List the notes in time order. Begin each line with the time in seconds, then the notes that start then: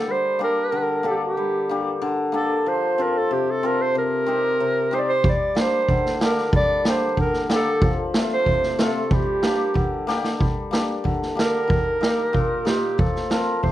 Already playing: D3 A4
0.07 G3 C5
0.39 A#3 D4 G4
0.44 A#4
0.72 D3
1.03 A#3 D4 G4 A4
1.11 G4 A4
1.24 G4
1.37 G3
1.69 A#3 D4 G4
2.02 D3
2.32 A#3 D4 G4 A4
2.66 F3 C5
2.98 C4 F4 A4
3.02 A#4
3.18 A4
3.31 C3 G4
3.51 A4
3.63 C4 F4 A4 A#4
3.82 C5
3.95 C3 A#4
4.26 C4 D#4 G4
4.60 C3
4.91 C4 D#4 G4 C5
4.98 D5
5.09 C5
5.24 G3, kick
5.29 D5
5.55 A#3 D4 G4, snare
5.61 C5
5.89 D3, kick
6.06 snare
6.21 A#3 D4 G4 A#4, snare
6.38 snare
6.53 G3 D5, kick
6.85 A#3 D4 G4, snare
6.89 C5
7.17 D3 A#4, kick
7.33 snare
7.49 A#3 D4 G4, snare
7.55 A4
7.82 F3, kick
8.14 A3 C4 F4, snare
8.33 C5
8.46 C3, kick
8.63 snare
8.79 A3 C4 F4, snare
8.83 A4
9.11 G3 G4, kick
9.43 A#3 D4 G4, snare
9.74 D3, kick
10.07 A#3 D4 G4, snare
10.24 snare
10.39 G3, kick
10.71 A#3 D4 G4, snare
11.04 D3, kick
11.22 snare
11.35 A#3 D4 G4, snare
11.41 A#4
11.68 D#3, kick
12.01 A#3 D#4 G4, snare
12.33 A#2, kick
12.65 A#3 D#4 F4 G4, snare
12.98 F3 A4, kick
13.16 snare
13.30 C4 F4 A4 A#4, snare
13.63 C3 C5, kick